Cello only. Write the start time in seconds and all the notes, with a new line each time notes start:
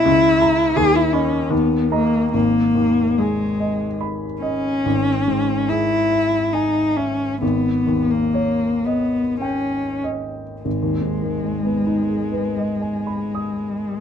Already playing: E4
0.76 G#4
0.96 E4
1.13 C#4
1.52 B3
1.93 A#3
2.32 A#3
3.18 G#3
4.42 C#4
5.69 E4
6.53 D#4
6.97 C#4
7.41 B3
8.10 A#3
8.85 B3
9.40 C#4
10.62 G#3